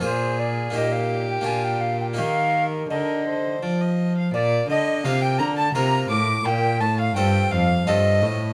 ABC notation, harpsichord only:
X:1
M:3/4
L:1/8
Q:1/4=85
K:Eb
V:1 name="Harpsichord"
[B,FA]2 [B,EG]2 [B,DF]2 | [B,EG]6 | [K:Bb] z2 [B,FB]2 [B,FB]2 | z2 [CFA]2 [CFA]2 |]
V:2 name="Harpsichord" clef=bass
B,,2 B,,2 B,,2 | E,2 D,2 F,2 | [K:Bb] B,, D, C, D, C, A,, | B,, A,, G,, F,, G,, A,, |]